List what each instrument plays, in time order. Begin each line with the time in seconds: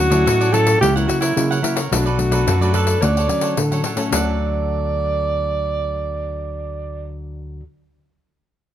Already playing: nylon-string guitar D3, alto saxophone F#4
0.10 tine electric piano D2, nylon-string guitar F#3 C#4 E4, cavaquinho A4 C#5 D5, pandeiro
0.26 tine electric piano A2, nylon-string guitar A2, cavaquinho F#4 A4 C#5 D5, pandeiro
0.41 cavaquinho A4 C#5 D5, pandeiro
0.52 nylon-string guitar F#3 C#4 E4, cavaquinho F#4 A4 C#5 D5, alto saxophone A4, pandeiro
0.67 pandeiro
0.81 tine electric piano C#2, nylon-string guitar C#3 F#3 A#3 E4, cavaquinho E4 A#4 C#5 F#5, alto saxophone G4, pandeiro
0.95 nylon-string guitar F#3 A#3 E4, cavaquinho A#4 C#5 F#5, pandeiro
1.08 alto saxophone F#4, muted cavaquinho stroke, pandeiro
1.21 alto saxophone E4, cavaquinho A#4 C#5 F#5, pandeiro
1.36 nylon-string guitar C#3 F#3 A#3 E4, tine electric piano C#3, pandeiro
1.51 cavaquinho A#4 C#5 F#5, pandeiro
1.62 nylon-string guitar F#3 A#3 E4, cavaquinho E4 A#4 C#5 F#5, pandeiro
1.76 cavaquinho A#4 C#5 F#5, pandeiro
1.92 tine electric piano B1, nylon-string guitar B2 F#3 A3 D4, cavaquinho D4 A4 B4 D5, alto saxophone F#4, pandeiro
2.06 cavaquinho A4 B4 D5, pandeiro
2.18 nylon-string guitar F#3 A3 D4, muted cavaquinho stroke, pandeiro
2.31 tine electric piano B1, cavaquinho A4 B4 D5, pandeiro
2.47 tine electric piano F#2, nylon-string guitar F#2, cavaquinho D4 A4 B4 D5, pandeiro
2.61 nylon-string guitar F#3 A3 D4, cavaquinho A4 B4 D5, pandeiro
2.73 cavaquinho D4 A4 B4 D5, alto saxophone A4, pandeiro
2.87 pandeiro
3.01 tine electric piano D2, nylon-string guitar D3 F#3 A3 C#4, cavaquinho D4 A4 C#5 F#5, alto saxophone D5, pandeiro
3.17 cavaquinho A4 C#5 F#5, pandeiro
3.28 nylon-string guitar F#3 A3 C#4, muted cavaquinho stroke, pandeiro
3.41 cavaquinho A4 C#5 F#5, pandeiro
3.57 nylon-string guitar A2, tine electric piano D3, pandeiro
3.71 nylon-string guitar F#3 A3 C#4, cavaquinho A4 C#5 F#5, pandeiro
3.84 cavaquinho D4 A4 C#5 F#5, pandeiro
3.96 nylon-string guitar F#3 A3 C#4, cavaquinho A4 C#5 F#5, pandeiro
4.10 tine electric piano D2, nylon-string guitar D3 F#3, cavaquinho D4 A4, alto saxophone D5, pandeiro
4.14 nylon-string guitar A3, cavaquinho F#5